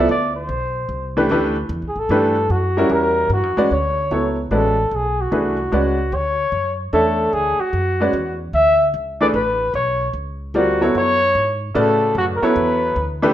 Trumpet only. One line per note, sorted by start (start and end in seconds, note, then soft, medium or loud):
0.11 0.35 D5 medium
0.36 1.13 C5 medium
1.88 2.00 G#4 medium
1.99 2.53 A4 medium
2.51 2.93 F#4 medium
2.92 3.32 A#4 medium
3.33 3.70 F#4 medium
3.72 4.35 C#5 medium
4.54 4.96 A4 medium
4.95 5.22 G#4 medium
5.21 5.74 F#4 medium
5.75 6.16 F#4 medium
6.14 6.80 C#5 loud
6.94 7.35 A4 medium
7.33 7.61 G#4 medium
7.60 8.41 F#4 medium
8.54 8.92 E5 loud
9.21 9.27 D5 medium
9.34 9.72 B4 medium
9.75 10.13 C#5 medium
10.57 10.94 F#4 medium
10.98 11.60 C#5 loud
11.78 12.15 A4 medium
12.18 12.25 F#4 medium
12.36 12.46 A#4 medium
12.44 13.24 B4 medium